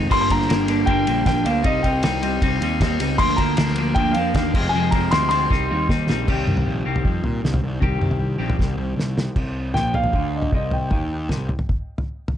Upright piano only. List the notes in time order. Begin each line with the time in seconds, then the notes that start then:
0.12 C6
0.21 C6
0.31 A#5
0.86 G5
1.26 G5
1.45 F5
1.65 D#5
1.83 G5
3.18 C6
3.36 A#5
3.95 G5
4.12 F5
4.69 G#5
4.91 A#5
5.11 C6
5.29 C6
9.74 G5
9.95 F5
10.36 D#5
10.54 D#5
10.73 G5